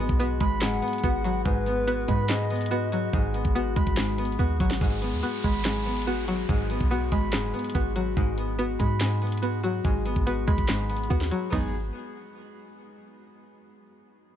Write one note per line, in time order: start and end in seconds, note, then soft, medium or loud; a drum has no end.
0.00 0.60 G#2 loud
0.00 0.62 F#3 medium
0.00 0.60 G#3 loud
0.00 0.18 B3 medium
0.00 0.82 B3 medium
0.00 0.20 F#4 medium
0.09 0.39 B1 loud
0.09 kick loud
0.20 1.02 B3 loud
0.20 1.03 F#4 medium
0.20 closed hi-hat medium
0.40 0.63 G#1 loud
0.40 1.46 G#3 medium
0.40 1.76 B5 loud
0.40 kick loud
0.40 closed hi-hat medium
0.61 0.82 F#1 loud
0.61 1.44 G#2 loud
0.61 1.45 G#3 loud
0.61 1.41 F#5 medium
0.61 snare loud
0.61 clap medium
0.61 closed hi-hat medium
0.82 1.66 B3 medium
0.82 closed hi-hat soft
0.88 closed hi-hat medium
0.93 closed hi-hat medium
0.98 closed hi-hat medium
1.04 1.44 G#1 loud
1.04 1.46 B3 loud
1.04 1.24 F#4 medium
1.04 kick loud
1.04 closed hi-hat medium
1.24 1.45 F#3 medium
1.24 1.87 F#4 medium
1.24 closed hi-hat medium
1.45 2.06 G#1 loud
1.45 2.28 G#2 loud
1.45 2.29 G#3 loud
1.45 2.25 B4 loud
1.45 kick loud
1.45 closed hi-hat medium
1.66 2.50 B3 medium
1.66 closed hi-hat medium
1.87 2.70 B3 loud
1.87 2.70 F#4 medium
1.87 closed hi-hat medium
2.08 3.09 G#2 loud
2.08 3.13 G#3 medium
2.08 3.43 B5 medium
2.08 kick loud
2.08 closed hi-hat medium
2.29 3.12 G#2 loud
2.29 3.13 G#3 loud
2.29 3.09 D#5 medium
2.29 snare loud
2.29 clap medium
2.29 closed hi-hat medium
2.50 3.34 B3 medium
2.50 closed hi-hat soft
2.56 closed hi-hat medium
2.61 closed hi-hat medium
2.66 closed hi-hat medium
2.71 3.54 B3 medium
2.71 2.92 F#4 loud
2.71 closed hi-hat medium
2.92 3.97 F#3 medium
2.92 3.55 F#4 medium
2.92 closed hi-hat medium
3.13 3.44 G#1 loud
3.13 3.96 G#2 loud
3.13 3.96 G#3 loud
3.13 kick loud
3.13 closed hi-hat medium
3.34 4.18 B3 medium
3.34 closed hi-hat medium
3.45 3.75 G#1 loud
3.45 kick loud
3.55 4.38 B3 medium
3.55 4.38 F#4 medium
3.55 closed hi-hat medium
3.76 3.86 D#2 loud
3.76 4.81 G#3 medium
3.76 5.11 B5 loud
3.76 kick loud
3.76 closed hi-hat medium
3.87 4.37 G#1 loud
3.87 kick medium
3.87 closed hi-hat medium
3.97 4.80 G#2 medium
3.97 4.80 G#3 medium
3.97 snare loud
3.97 clap loud
3.97 closed hi-hat medium
4.18 5.01 B3 medium
4.18 closed hi-hat medium
4.25 closed hi-hat medium
4.32 closed hi-hat soft
4.39 4.59 D#2 loud
4.39 4.81 B3 medium
4.39 4.60 F#4 medium
4.39 kick medium
4.39 closed hi-hat medium
4.60 4.80 G#1 loud
4.60 4.81 F#3 medium
4.60 5.22 F#4 medium
4.60 kick loud
4.60 closed hi-hat medium
4.71 snare loud
4.81 5.14 G#1 loud
4.81 5.64 G#2 medium
4.81 5.64 G#3 loud
4.81 kick loud
4.81 closed hi-hat medium
4.81 downlifter medium
5.02 5.85 B3 medium
5.02 closed hi-hat medium
5.13 5.23 D#2 loud
5.22 6.06 B3 medium
5.22 6.07 F#4 medium
5.22 closed hi-hat medium
5.44 6.45 G#1 loud
5.44 6.49 G#3 medium
5.44 6.79 B5 medium
5.44 kick loud
5.44 closed hi-hat medium
5.65 6.48 G#2 medium
5.65 6.49 G#3 loud
5.65 snare loud
5.65 clap medium
5.65 closed hi-hat medium
5.86 6.70 B3 medium
5.86 closed hi-hat soft
5.91 closed hi-hat medium
5.97 closed hi-hat medium
6.02 closed hi-hat medium
6.07 6.90 B3 medium
6.07 6.28 F#4 loud
6.07 closed hi-hat medium
6.28 7.33 F#3 medium
6.28 6.91 F#4 medium
6.28 closed hi-hat medium
6.49 6.79 G#1 loud
6.49 7.32 G#2 medium
6.49 7.32 G#3 loud
6.49 kick loud
6.49 closed hi-hat medium
6.70 7.53 B3 medium
6.70 closed hi-hat medium
6.80 7.11 B1 loud
6.80 kick loud
6.91 7.74 B3 loud
6.91 7.75 F#4 medium
6.91 closed hi-hat medium
7.12 7.34 G#1 loud
7.12 8.17 G#3 medium
7.12 8.47 B5 medium
7.12 kick medium
7.12 closed hi-hat medium
7.33 7.53 F#1 loud
7.33 8.16 G#2 medium
7.33 8.16 G#3 loud
7.33 snare loud
7.33 clap medium
7.33 closed hi-hat medium
7.53 8.37 B3 medium
7.53 closed hi-hat soft
7.59 closed hi-hat medium
7.64 closed hi-hat medium
7.70 closed hi-hat medium
7.75 8.15 G#1 loud
7.75 8.17 B3 loud
7.75 7.95 F#4 medium
7.75 kick loud
7.75 closed hi-hat medium
7.96 8.17 F#3 medium
7.96 8.58 F#4 medium
7.96 closed hi-hat medium
8.17 8.77 G#1 loud
8.17 8.99 G#2 loud
8.17 9.00 G#3 loud
8.17 kick loud
8.17 closed hi-hat medium
8.37 9.21 B3 medium
8.37 closed hi-hat medium
8.59 9.41 B3 loud
8.59 9.42 F#4 medium
8.59 closed hi-hat medium
8.79 9.81 G#2 loud
8.79 9.85 G#3 medium
8.79 10.05 B5 medium
8.79 kick loud
8.79 closed hi-hat medium
9.01 9.83 G#2 loud
9.01 9.84 G#3 loud
9.01 snare loud
9.01 clap medium
9.01 closed hi-hat medium
9.22 10.05 B3 medium
9.22 closed hi-hat soft
9.27 closed hi-hat medium
9.32 closed hi-hat medium
9.37 closed hi-hat medium
9.42 10.25 B3 medium
9.42 9.62 F#4 medium
9.42 closed hi-hat medium
9.63 10.69 F#3 medium
9.63 10.26 F#4 medium
9.63 closed hi-hat medium
9.85 10.15 G#1 loud
9.85 10.67 G#2 loud
9.85 10.67 G#3 loud
9.85 kick loud
9.85 closed hi-hat medium
10.05 10.88 B3 medium
10.05 closed hi-hat medium
10.16 10.46 G#1 loud
10.16 kick loud
10.27 11.09 B3 medium
10.27 11.09 F#4 medium
10.27 closed hi-hat medium
10.47 10.58 D#2 loud
10.47 11.51 G#3 medium
10.47 11.52 B5 loud
10.47 kick loud
10.47 closed hi-hat medium
10.58 11.08 G#1 loud
10.58 kick medium
10.58 closed hi-hat medium
10.68 11.52 G#2 loud
10.68 11.57 G#3 medium
10.68 snare loud
10.68 clap medium
10.68 closed hi-hat medium
10.89 11.50 B3 medium
10.89 closed hi-hat medium
10.97 closed hi-hat medium
11.04 closed hi-hat soft
11.10 11.31 D#2 loud
11.10 11.51 B3 medium
11.10 11.31 F#4 medium
11.10 kick loud
11.10 closed hi-hat medium
11.21 snare medium
11.31 11.51 F#3 medium
11.31 11.51 F#4 medium
11.31 closed hi-hat medium
11.50 11.91 G#1 loud
11.50 11.72 F#3 medium
11.50 11.72 G#3 medium
11.50 11.72 B3 medium
11.50 11.72 D#4 loud
11.50 11.72 F#4 medium
11.50 kick loud
11.50 floor tom loud
11.50 open hi-hat medium
11.55 11.72 G#4 loud